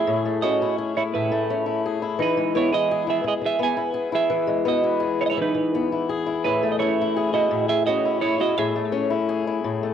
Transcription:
0.00 0.39 E3 medium
0.00 0.62 E4 medium
0.00 0.38 G#4 medium
0.00 0.78 G#4 medium
0.00 0.38 E5 medium
0.07 1.13 A2 medium
0.25 1.30 A3 medium
0.42 1.49 C#4 medium
0.42 0.75 F#4 medium
0.42 0.75 D#5 medium
0.62 0.96 E4 medium
0.78 1.85 G#4 medium
0.97 1.66 E4 medium
0.97 1.02 E4 medium
0.97 1.02 C#5 medium
1.14 2.18 A2 medium
1.14 1.81 E4 medium
1.14 1.84 B4 medium
1.32 2.18 A3 medium
1.50 2.18 C#4 soft
1.66 2.02 E4 medium
1.86 2.91 G#4 medium
2.02 2.72 E4 medium
2.19 3.24 E3 medium
2.19 2.53 D#4 medium
2.19 2.54 B4 medium
2.37 3.41 G#3 medium
2.55 3.58 B3 medium
2.55 2.72 E4 medium
2.55 2.74 C#5 medium
2.72 3.06 E4 medium
2.72 3.05 G#4 medium
2.72 3.06 D#5 medium
2.91 3.94 G#4 medium
3.07 3.76 E4 medium
3.07 3.25 G#4 medium
3.07 3.27 E5 medium
3.24 3.33 G#4 medium
3.24 muted steel-string acoustic guitar stroke medium
3.28 3.33 D#5 medium
3.42 3.61 G#4 medium
3.42 muted steel-string acoustic guitar stroke medium
3.46 3.61 E5 medium
3.59 4.64 B3 medium
3.59 4.12 G#5 medium
3.64 4.12 B4 medium
3.77 4.12 E4 medium
3.94 5.00 G#4 medium
4.12 4.83 E4 medium
4.12 4.64 G#4 medium
4.12 4.68 E5 medium
4.30 5.37 E3 medium
4.47 5.54 G#3 medium
4.65 5.73 B3 medium
4.65 5.01 F#4 medium
4.65 5.01 D#5 medium
4.84 5.92 E4 medium
5.00 6.09 G#4 medium
5.21 5.23 E4 medium
5.21 5.23 C#5 medium
5.26 5.38 C#5 medium
5.26 5.30 D#5 medium
5.31 5.39 E4 medium
5.37 8.87 E3 medium
5.42 6.07 D#4 medium
5.42 6.07 B4 medium
5.55 muted steel-string acoustic guitar stroke medium
5.75 6.45 B3 medium
5.92 6.26 E4 medium
6.09 7.16 G#4 medium
6.26 7.01 E4 medium
6.44 7.50 A2 medium
6.44 6.71 E4 medium
6.44 6.71 B4 medium
6.63 7.69 A3 medium
6.72 6.79 D#5 medium
6.79 7.87 C#4 medium
6.79 7.29 E4 medium
6.79 7.34 C#5 medium
7.01 7.33 E4 medium
7.17 8.21 G#4 medium
7.33 8.05 E4 medium
7.33 7.67 F#4 medium
7.33 7.69 D#5 medium
7.51 8.55 A2 medium
7.69 7.86 G#4 medium
7.69 7.86 E5 loud
7.87 8.56 C#4 medium
7.87 8.20 F#4 medium
7.87 8.19 D#5 medium
8.05 8.39 E4 medium
8.21 8.38 E4 medium
8.21 9.27 G#4 medium
8.21 8.40 C#5 medium
8.40 9.10 E4 medium
8.40 8.56 F#4 medium
8.40 8.58 D#5 medium
8.58 9.63 A2 medium
8.58 9.94 G#4 medium
8.58 9.94 E5 medium
8.76 9.81 A3 medium
8.92 9.94 C#4 medium
9.10 9.45 E4 medium
9.29 9.94 G#4 medium
9.47 9.94 E4 medium
9.64 9.94 A2 medium
9.83 9.94 A3 medium

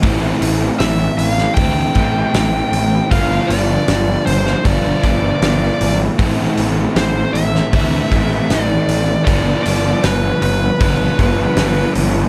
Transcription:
0.01 0.31 A1 medium
0.01 1.92 A2 medium
0.01 1.93 E3 medium
0.01 1.94 A3 medium
0.01 1.94 C4 medium
0.01 1.93 E4 medium
0.01 kick loud
0.01 open hi-hat medium
0.41 0.68 A1 medium
0.41 open hi-hat medium
0.79 1.07 A1 medium
0.79 1.18 E5 medium
0.79 snare loud
0.79 open hi-hat medium
1.18 1.46 A1 medium
1.18 1.29 E5 medium
1.18 open hi-hat soft
1.29 1.54 F5 medium
1.38 snare soft
1.54 1.84 D2 medium
1.54 3.08 A2 medium
1.54 3.09 E3 medium
1.54 3.09 A3 medium
1.54 3.11 G5 loud
1.54 kick loud
1.54 open hi-hat medium
1.59 3.10 C4 medium
1.59 3.10 E4 medium
1.94 2.23 A1 medium
1.94 2.31 A2 medium
1.94 2.32 E3 medium
1.94 2.32 A3 medium
1.94 2.32 C4 medium
1.94 2.31 E4 medium
1.94 kick medium
1.94 open hi-hat soft
2.32 2.61 A1 medium
2.32 3.08 A2 medium
2.32 3.09 E3 medium
2.32 3.09 A3 medium
2.32 3.09 C4 medium
2.32 3.10 E4 medium
2.32 snare loud
2.32 open hi-hat medium
2.72 2.99 A1 medium
2.72 open hi-hat soft
3.09 3.38 G1 medium
3.09 5.00 G2 medium
3.09 5.01 D3 medium
3.09 5.01 F3 medium
3.09 5.02 B3 medium
3.09 3.51 F5 medium
3.09 kick loud
3.09 open hi-hat medium
3.13 5.00 F4 medium
3.47 3.76 G1 medium
3.47 4.26 D5 medium
3.47 open hi-hat medium
3.88 4.15 G1 medium
3.88 snare loud
3.88 open hi-hat medium
4.26 4.54 G1 medium
4.26 4.65 C5 medium
4.26 open hi-hat soft
4.46 snare soft
4.64 4.92 G1 medium
4.64 6.16 G2 medium
4.64 6.16 D3 medium
4.64 6.17 F3 medium
4.64 6.20 B3 medium
4.64 6.17 F4 medium
4.64 5.04 D5 medium
4.64 kick loud
4.64 open hi-hat medium
5.01 5.31 G1 medium
5.01 5.39 G2 medium
5.01 5.40 D3 medium
5.01 5.39 F3 medium
5.01 5.43 B3 medium
5.01 5.39 F4 medium
5.01 5.42 D5 medium
5.01 kick medium
5.01 open hi-hat soft
5.41 5.69 G1 medium
5.41 6.16 G2 medium
5.41 6.16 D3 medium
5.41 6.17 F3 medium
5.41 6.21 B3 medium
5.41 6.18 F4 medium
5.41 5.96 D5 medium
5.41 snare loud
5.41 open hi-hat medium
5.81 6.08 G#1 medium
5.81 open hi-hat medium
6.18 6.46 A1 medium
6.18 8.08 A2 medium
6.18 8.09 E3 medium
6.18 8.09 A3 medium
6.18 8.10 C4 loud
6.18 8.09 E4 loud
6.18 kick loud
6.18 open hi-hat medium
6.58 6.85 A1 medium
6.58 open hi-hat medium
6.96 7.23 A1 medium
6.96 7.36 C5 medium
6.96 snare loud
6.96 open hi-hat medium
7.33 7.61 A1 medium
7.33 8.63 E5 loud
7.33 open hi-hat medium
7.55 snare soft
7.71 8.00 D2 medium
7.71 9.23 A2 medium
7.71 9.24 E3 medium
7.71 9.24 A3 medium
7.71 9.24 C4 medium
7.71 9.25 E4 medium
7.71 kick loud
7.71 open hi-hat medium
8.10 8.38 A1 medium
8.10 8.48 A2 medium
8.10 8.48 E3 medium
8.10 8.48 A3 medium
8.10 8.47 C4 medium
8.10 8.47 E4 medium
8.10 kick medium
8.10 open hi-hat soft
8.49 8.77 A1 medium
8.49 9.24 A2 medium
8.49 9.25 E3 medium
8.49 9.25 A3 medium
8.49 9.25 C4 medium
8.49 9.26 E4 medium
8.49 snare medium
8.49 open hi-hat medium
8.63 9.25 D5 loud
8.88 9.15 A1 medium
8.88 open hi-hat medium
9.25 9.54 G1 medium
9.25 11.15 G2 medium
9.25 11.16 D3 medium
9.25 11.16 F3 medium
9.25 11.17 B3 medium
9.25 11.17 D4 medium
9.25 9.62 D5 medium
9.25 kick loud
9.25 open hi-hat medium
9.63 9.93 G1 medium
9.63 10.03 D5 medium
9.63 open hi-hat medium
10.04 10.30 G1 medium
10.04 10.41 B4 medium
10.04 snare loud
10.04 open hi-hat medium
10.42 10.69 G1 medium
10.42 11.91 B4 medium
10.42 open hi-hat soft
10.79 11.07 G1 medium
10.79 12.29 G2 medium
10.79 12.29 D3 medium
10.79 12.29 F3 medium
10.79 12.29 B3 medium
10.79 12.29 D4 medium
10.79 kick loud
10.79 open hi-hat medium
11.18 11.45 G1 medium
11.18 11.56 G2 medium
11.18 11.56 D3 medium
11.18 11.55 F3 medium
11.18 11.54 B3 medium
11.18 11.54 D4 medium
11.18 kick medium
11.18 open hi-hat soft
11.56 11.83 G1 medium
11.56 12.29 G2 medium
11.56 12.29 D3 medium
11.56 12.29 F3 medium
11.56 12.29 B3 medium
11.56 12.29 D4 medium
11.56 snare medium
11.56 open hi-hat medium
11.95 12.22 G1 medium
11.95 open hi-hat soft

